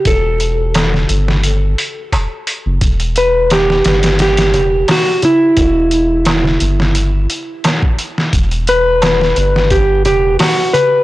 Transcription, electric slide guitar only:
X:1
M:4/4
L:1/8
Q:"Swing 16ths" 1/4=87
K:Em
V:1 name="Electric slide guitar"
A6 z2 | z B G2 G2 F E- | E4- E z3 | z B3 G G F B |]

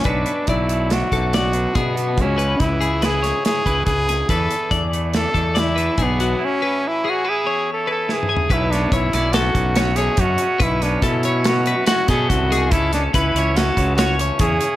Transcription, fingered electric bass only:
X:1
M:5/4
L:1/8
Q:1/4=142
K:Bdor
V:1 name="Fingered electric bass" clef=bass
B,,, z B,,,3 B,,,3 B,,2 | C,,2 C,,4 z C,, C,,2 | E,, z E,,3 E,,3 B,,,2 | z8 z2 |
B,,,2 B,,, B,,,2 B,,,3 F,, z | B,,,2 B,,4 z B,, =C,,2 | C,,2 C,, C,,2 C,,3 E,, z |]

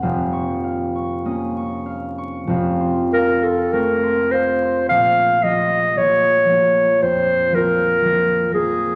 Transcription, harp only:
X:1
M:4/4
L:1/16
Q:1/4=55
K:Bbm
V:1 name="Harp"
f d' f d' e' d' f d' f c' f c' d' c' f c' | z16 |]
V:2 name="Harp"
[F,,,F,,B,]4 [B,D]4 [F,,,F,,]4 [=A,C]4 | B,,,2 [F,B,F]2 [F,B,F]2 [F,B,F]2 F,,2 [F,B,F]2 [F,B,F]2 [F,B,F]2 |]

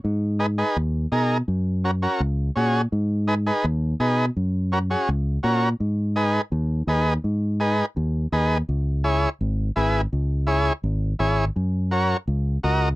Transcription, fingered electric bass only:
X:1
M:4/4
L:1/8
Q:1/4=167
K:G#m
V:1 name="Fingered electric bass" clef=bass
G,,4 D,,2 B,,2 | F,,4 C,,2 A,,2 | G,,4 D,,2 B,,2 | F,,4 C,,2 A,,2 |
G,,4 D,,2 D,,2 | G,,4 D,,2 D,,2 | C,,4 G,,,2 G,,,2 | C,,4 G,,,2 G,,,2 |
F,,4 C,,2 C,,2 |]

